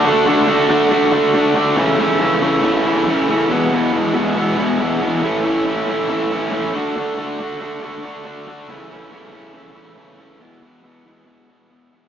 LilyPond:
\new Staff \with { instrumentName = "Overdriven electric guitar" } { \time 4/4 \key a \major \tempo 4 = 139 <d a d' fis'>8 <d a d' fis'>8 <d a d' fis'>8 <d a d' fis'>8 <d a d' fis'>8 <d a d' fis'>8 <d a d' fis'>8 <d a d' fis'>8 | <cis e a cis' e'>8 <cis e a cis' e'>8 <cis e a cis' e'>8 <cis e a cis' e'>8 <cis e a cis' e'>8 <cis e a cis' e'>8 <cis e a cis' e'>8 <cis e a cis' e'>8 | <e, b, e gis b e'>8 <e, b, e gis b e'>8 <e, b, e gis b e'>8 <e, b, e gis b e'>8 <e, b, e gis b e'>8 <e, b, e gis b e'>8 <e, b, e gis b e'>8 <e, b, e gis b e'>8 | <a, e a cis' e'>8 <a, e a cis' e'>8 <a, e a cis' e'>8 <a, e a cis' e'>8 <a, e a cis' e'>8 <a, e a cis' e'>8 <a, e a cis' e'>8 <d a d' fis'>8 |
<d a d' fis'>8 <d a d' fis'>8 <d a d' fis'>8 <d a d' fis'>8 <d a d' fis'>8 <d a d' fis'>8 <d a d' fis'>8 <d a d' fis'>8 | <cis e a cis' e'>8 <cis e a cis' e'>8 <cis e a cis' e'>8 <cis e a cis' e'>8 <cis e a cis' e'>8 <cis e a cis' e'>8 <cis e a cis' e'>8 <cis e a cis' e'>8 | <e, b, e gis b e'>8 <e, b, e gis b e'>8 <e, b, e gis b e'>8 <e, b, e gis b e'>8 <e, b, e gis b e'>8 <e, b, e gis b e'>8 <e, b, e gis b e'>8 <e, b, e gis b e'>8 | }